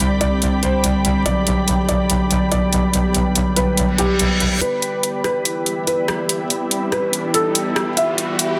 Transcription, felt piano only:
0.21 D5
0.63 C5
1.26 D5
1.89 D5
2.52 D5
3.56 B4
3.98 G4
4.61 B4
5.24 B4
5.87 B4
6.92 B4
7.34 A4
7.97 E5

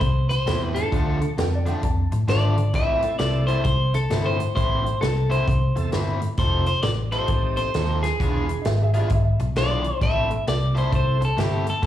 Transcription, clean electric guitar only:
Already playing: C5
0.29 C5
0.65 B4
0.74 A4
2.29 D5
2.75 E5
3.19 D5
3.47 C5
3.64 C5
3.95 A4
4.26 C5
4.56 C5
5.01 A4
5.31 C5
6.39 C5
6.67 C5
6.83 D5
7.12 C5
7.57 C5
8.03 G#4
9.58 D5
10.03 E5
10.48 D5
10.78 C5
10.95 C5
11.25 A4
11.40 G4
11.70 A4

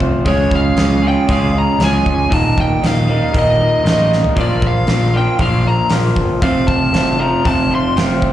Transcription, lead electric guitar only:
0.28 C#5
0.55 F5
1.08 G5
1.32 F5
1.58 A#5
1.83 G#5
2.34 A5
2.60 G5
2.87 F5
3.38 D#5
4.41 D5
4.67 F5
5.17 G5
5.42 F5
5.67 A#5
6.42 F5
6.67 A5
7.21 A#5
7.47 A5
7.75 C6

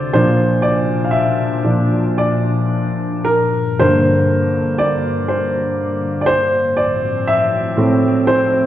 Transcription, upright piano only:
Already playing: C5 D5
0.13 A#2 F3 D4 C5
0.62 D5
1.04 F5
1.11 E5
1.64 A#2 F3 D4
2.18 D5
3.25 A#4
3.79 G2 D3 A#3 C5
4.78 D5
5.28 C5
6.21 D5
6.26 C5
6.77 D5
7.27 E5
7.77 A2 A3 C4
8.27 C5

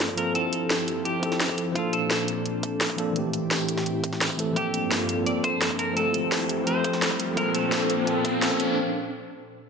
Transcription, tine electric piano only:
Already playing: F3 A#3 C4 A4
0.16 F3 A#3 C4 A4
0.32 F3 C4
0.36 E4 A4
1.20 F3 C4
1.24 E4 A4
1.72 F3 A#3
1.76 D4 A4
2.97 F3 A#3 D4 A4
3.13 E3 A3
3.17 C4 G4
4.37 E3 A3 C4 A4
4.53 F3 A#3
4.57 C4 A4
5.23 F3 A#3
5.27 C4 A4
5.93 F3 A3
5.97 C4 A4
6.64 F3 A3
6.68 C4 A4
7.34 F3 A#3
7.38 C4 A4
7.69 F3 A#3
7.73 C4 A4
8.04 F3 A#3
8.08 C4 A4
8.39 F3 A#3
8.43 C4 A4

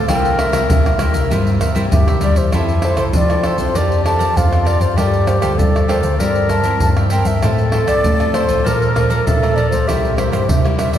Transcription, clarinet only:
0.08 A#4
1.92 G4
2.53 E4
3.14 F4
3.76 G4
4.37 F4
4.98 G4
5.58 A4
6.19 A#4
7.42 A4
8.65 A#4
9.26 A4
9.87 G4

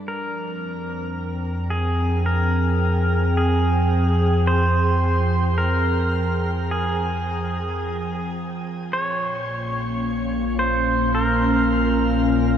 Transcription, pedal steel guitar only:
0.08 A#4
1.70 G#4
2.26 A#4
3.37 G#4
4.47 C5
5.58 A#4
6.71 G#4
8.93 C#5
10.59 C5
11.15 A#4

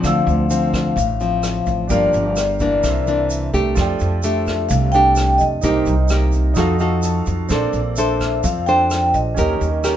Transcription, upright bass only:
0.04 D2
0.27 D2
0.97 A1
1.67 A1
1.90 G1
2.14 G1
2.84 C2
3.54 C2
3.77 F2
4.01 F2
4.71 C2
5.41 F2
5.64 C2
5.87 C2
6.57 F2
7.27 F2
7.50 A#1
7.73 A#1
8.44 F2
9.14 A#1
9.38 D#2
9.61 D#2

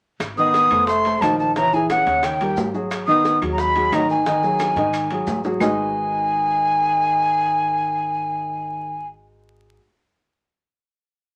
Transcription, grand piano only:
0.38 D#3 D#4 D#5
0.72 A3 A4 C5
1.06 A3 A4 C5
1.22 D#3 D#4 D#5
1.56 C#3 C#4 C#5
1.73 E3 E4 G#4
2.07 C#3 C#4 C#5
2.41 G3 G4 A#4
2.74 F#3 F#4 G#4
3.08 D#3 D#4 D#5
3.42 F#3 F#4 G#4
3.76 F#3 F#4 G#4
3.93 D#3 D#4 D#5
4.27 D#3 D#4 D#5
4.43 F#3 F#4 G#4
4.77 D#3 D#4 D#5
5.11 F#3 F#4 G#4
5.45 F#3 F#4 G#4
5.60 G#3 D#4 F#4 G#4 B4 D#5

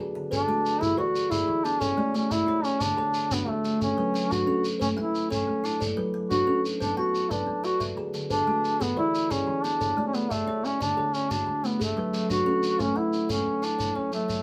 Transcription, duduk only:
0.31 D4
0.81 E4
0.98 F#4
1.30 E4
1.64 D4
1.82 C#4
2.16 C#4
2.32 E4
2.65 C#4
2.82 D4
3.32 B3
3.49 A3
3.82 C#4
4.32 F#4
4.81 C#4
4.98 E4
5.31 C#4
5.65 D4
6.31 F#4
6.80 D4
6.98 F#4
7.31 D4
7.64 F#4
8.31 D4
8.81 B3
8.98 E4
9.31 C#4
9.64 D4
10.07 C#4
10.14 B3
10.32 A3
10.65 C#4
10.82 D4
11.15 C#4
11.32 D4
11.66 B3
11.83 A3
12.31 F#4
12.80 C#4
12.98 E4
13.31 C#4
13.64 D4
13.97 C#4
14.14 A3

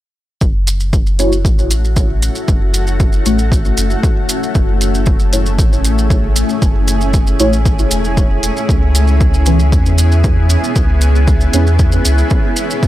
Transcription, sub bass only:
0.41 F#1
1.45 A1
2.48 F#1
3.26 A1
3.78 F#1
4.55 F#1
5.59 A1
6.62 F#1
7.40 A1
7.91 E1
8.69 C#2
9.72 E2
10.76 C#2
11.53 E2
12.05 C#2
12.83 C#2

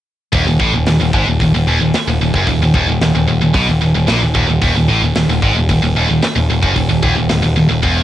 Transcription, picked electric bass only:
0.33 D#1
0.47 D#1
0.60 A1
0.73 D#1
0.87 D#1
1.01 D#1
1.13 G#1
1.27 D#1
1.40 D#1
1.54 D#1
1.67 D#1
1.81 D#1
1.94 muted picked electric bass stroke
2.08 D#1
2.21 D#1
2.34 F#1
2.47 D#1
2.61 D#1
2.74 D#1
2.88 D#1
3.01 D#1
3.15 D#1
3.28 D#1
3.42 D#1
3.55 B1
3.69 D#1
3.82 D#1
3.95 D#1
4.09 A#1
4.23 D#1
4.35 D#1
4.49 D#1
4.62 D#1
4.75 D#1
4.89 A1
5.02 D#1
5.15 D#1
5.28 D#1
5.42 G#1
5.54 D#1
5.69 D#1
5.82 D#1
5.95 D#1
6.09 D#1
6.23 muted picked electric bass stroke
6.36 D#1
6.50 D#1
6.63 F#1
6.76 D#1
6.91 D#1
7.03 D#1
7.18 D#1
7.31 D#1
7.44 D#1
7.58 D#1
7.71 D#1
7.83 E1

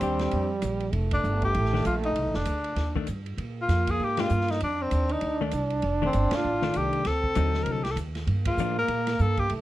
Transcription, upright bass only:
0.01 D#2
0.33 F2
0.62 A#1
0.93 F1
1.24 G1
1.55 A1
1.85 A#1
2.16 C2
2.26 A1
2.36 F1
2.46 D2
2.76 D#2
3.08 G2
3.37 A#2
3.68 F2
4.00 G#2
4.30 G2
4.62 F2
4.91 D#2
5.22 D2
5.53 C2
5.83 F1
6.14 G1
6.32 muted upright bass stroke
6.45 A1
6.76 C2
7.05 D2
7.36 D#2
7.66 C2
7.96 D#2
8.27 G2
8.57 A2
8.88 A#2
9.19 G2
9.50 C2

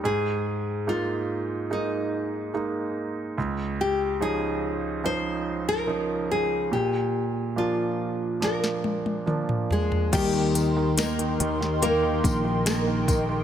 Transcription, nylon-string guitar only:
0.05 G#4
0.89 F4
1.73 D#4
3.81 G4
4.22 G#4
5.06 C5
5.69 A#4
6.31 G#4
6.73 G4
7.58 F4
8.44 A#4
9.72 G#3 G#4
10.15 G3 G4
10.99 A#3 A#4
11.83 A#3 A#4
12.66 A#3 A#4
13.29 G#4

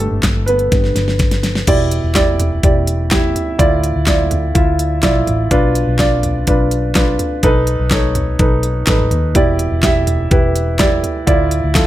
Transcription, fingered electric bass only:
0.11 G1
0.23 G1
0.72 G1
0.95 G1
1.68 E1
2.04 E1
2.64 E1
3.59 D2
3.96 D2
4.55 D2
5.03 B1
5.27 A1
5.51 B1
5.87 B1
6.48 B1
7.43 B1
7.79 B1
8.39 B1
8.87 A1
9.11 D#2
9.35 E1
9.72 E1
10.31 E1
11.27 D2
11.64 D2

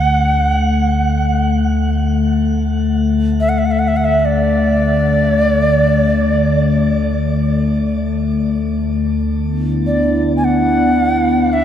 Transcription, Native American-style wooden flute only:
Already playing: F#5
3.40 E5
3.49 F#5
3.58 E5
3.65 F#5
3.71 E5
3.79 F#5
3.88 E5
3.97 F#5
4.05 E5
4.19 E5
4.25 D5
9.87 D5
10.37 G#5
10.44 F#5
11.53 E5

